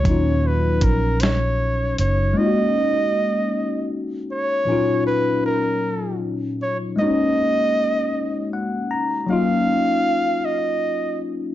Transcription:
<<
  \new Staff \with { instrumentName = "Flugelhorn" } { \time 6/8 \key ees \minor \tempo 4. = 52 des''8 ces''8 bes'8 des''4 des''8 | ees''2 r8 des''8~ | des''8 ces''8 bes'4 r8 des''8 | ees''2 r4 |
f''4. ees''4 r8 | }
  \new Staff \with { instrumentName = "Tine electric piano" } { \time 6/8 \key ees \minor << { r2. | r2. | r2. | r2 ges''8 bes''8 |
r2. | } \\ { <bes, ges des' ees' f'>2. | <aes bes des' ees' f' ges'>2. | <bes, f ges des' ees' f'>2. | <aes bes c' des' ees' ges'>2. |
<ges bes des' ees' f'>2. | } >> }
  \new Staff \with { instrumentName = "Fingered electric bass" } { \clef bass \time 6/8 \key ees \minor ees,4 bes,,4. ges,,8 | r2. | r2. | r2. |
r2. | }
  \new DrumStaff \with { instrumentName = "Drums" } \drummode { \time 6/8 <hh bd>4 <hh bd>8 <hh sn>4 hh8 | r4. r4. | r4. r4. | r4. r4. |
r4. r4. | }
>>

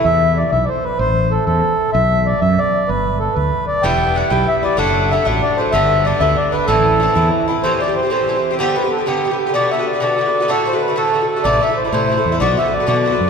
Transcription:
<<
  \new Staff \with { instrumentName = "Accordion" } { \time 6/8 \key a \dorian \tempo 4. = 126 e''4 d''8 e''16. d''32 c''8 b'8 | c''4 a'8 a'4. | e''4 d''8 e''8 d''4 | b'4 a'8 b'4 d''8 |
g''4 fis''8 g''8 e''8 d''8 | fis''4 e''8 fis''8 d''8 c''8 | e''4 d''8 e''8 d''8 b'8 | a'2 r4 |
c''8 d''8 c''8 c''4. | g'8 b'8 a'8 g'4 g'8 | d''8 e''8 d''8 d''4. | a'8 c''8 b'8 a'4 a'8 |
d''8 e''8 c''8 c''4. | d''8 e''8 d''8 d''4. | }
  \new Staff \with { instrumentName = "Bouzouki" } { \time 6/8 \key a \dorian r2. | r2. | r2. | r2. |
<g, g b e'>4 <g, g b e'>8 <g, g b e'>4 <g b e'>8 | <a, fis a d'>4 <a, fis a d'>8 <a, fis a d'>4 <fis a d'>8 | <g, d b d'>4 <g, d b d'>8 <g, d b d'>4 <d b d'>8 | <a, e c' e'>4 <a, e c' e'>8 <a, e c' e'>4 <e c' e'>8 |
<a, e c' g'>8 <a, e c' g'>16 <e c' g'>8 <e c' g'>16 <a, e c' g'>8 <a, e c' g'>16 <e c' g'>8 <e c' g'>16 | <g, d b g'>8 <g, d b g'>16 <d b g'>8 <d b g'>16 <g, d b g'>8 <g, d b g'>16 <d b g'>8 <d b g'>16 | <b, d b fis'>8 <b, d b fis'>16 <d b fis'>8 <d b fis'>16 <b, d b fis'>8 <b, d b fis'>16 <d b fis'>8 <d b fis'>16 | <a, d a fis'>8 <a, d a fis'>16 <d a fis'>8 <d a fis'>16 <a, d a fis'>8 <a, d a fis'>16 <d a fis'>8 <d a fis'>16 |
<c e a e'>8 <c e a e'>16 <e a e'>8 <e a e'>16 <c e a e'>8 <c e a e'>16 <e a e'>8 <e a e'>16 | <b, d b fis'>8 <b, d b fis'>16 <d b fis'>8 <d b fis'>16 <b, d b fis'>8 <b, d b fis'>16 <d b fis'>8 r16 | }
  \new Staff \with { instrumentName = "Fretless electric bass" } { \clef bass \time 6/8 \key a \dorian e,4. b,,8 r4 | a,,4. e,8 r4 | b,,4. fis,8 r4 | g,,4. d,8 r4 |
e,,4. b,,8 r4 | fis,,4. a,,8 r4 | g,,4. d,8 r4 | a,,4. e,8 r4 |
r2. | r2. | r2. | r2. |
a,,8 r4 a,4 e,8 | b,,8 r4 b,4 fis,8 | }
>>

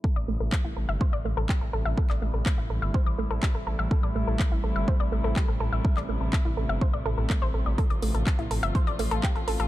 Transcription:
<<
  \new Staff \with { instrumentName = "Synth arpeggio sound" } { \time 4/4 \key a \minor \tempo 4 = 124 a'16 d''16 a16 a'16 a''16 e'16 a'16 e''16 c''16 d''16 a16 a'16 g'16 a'16 a'16 e''16 | a'16 d''16 a16 a'16 a''16 e'16 a'16 e''16 c''16 d''16 a16 a'16 g'16 a'16 a'16 e''16 | a'16 d''16 a16 a'16 a''16 e'16 a'16 e''16 c''16 d''16 a16 a'16 g'16 a'16 a'16 e''16 | a'16 d''16 a16 a'16 a''16 e'16 a'16 e''16 c''16 d''16 a'16 a'16 a16 c''16 a'16 d''16 |
a'16 d''16 a16 a'16 a''16 e'16 a'16 e''16 c''16 d''16 a16 a'16 g'16 a'16 a'16 a'16 | }
  \new Staff \with { instrumentName = "String section" } { \time 4/4 \key a \minor << { <g a e'>1~ | <g a e'>1~ | <g a e'>1~ | <g a e'>1 |
<f a f'>1 | } \\ { c1~ | c1~ | c1~ | c1~ |
c1 | } >> }
  \new Staff \with { instrumentName = "Detuned saw bass" } { \clef bass \time 4/4 \key a \minor r16 a,,16 a,,16 a,,16 r16 a,,16 a,,16 g,,16 r16 a,,16 a,,16 a,,16 r16 a,,16 a,,16 a,,16 | r16 a,,16 a,,16 a,,16 r16 a,,16 a,,16 g,,16 r16 a,,16 a,,16 a,,16 r16 a,,16 a,,16 a,,16 | r16 a,,16 a,,16 a,,16 r16 a,,16 a,,16 g,,16 r16 a,,16 a,,16 a,,16 r16 a,,16 a,,16 a,,16 | r16 a,,16 a,,16 a,,16 r16 a,,16 a,,16 g,,16 r16 a,,16 a,,16 a,,16 r16 a,,16 a,,16 a,,16 |
r16 a,,16 a,,16 a,,16 r16 a,,16 a,,16 g,,16 r16 a,,16 a,,16 a,,16 r16 a,,16 a,,16 a,,16 | }
  \new DrumStaff \with { instrumentName = "Drums" } \drummode { \time 4/4 bd4 <hc bd>4 bd4 <hc bd>4 | bd16 hc8. <hc bd>4 bd4 <hc bd>4 | bd4 <hc bd>4 bd4 <hc bd>4 | bd16 hc8. <hc bd>4 bd4 <hc bd>4 |
<hh bd>16 hh16 hho16 hh16 <hc hh bd>16 hh16 hho16 hh16 <hh bd>16 hh16 hho16 hh16 <hc hh bd>16 hh16 hho16 hh16 | }
>>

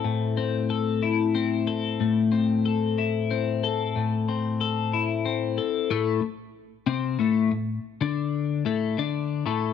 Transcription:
\new Staff \with { instrumentName = "Clean electric guitar" } { \time 6/8 \key a \minor \tempo 4. = 62 <a, c' e' a'>8 c'8 a'8 e'8 c'8 a'8 | a,8 c'8 a'8 e'8 c'8 a'8 | a,8 c'8 a'8 e'8 c'8 a'8 | <a, a>8 r4 <c c'>8 <a, a>8 a,8 |
r16 <d d'>4 <a, a>8 <d d'>8. <a, a>8 | }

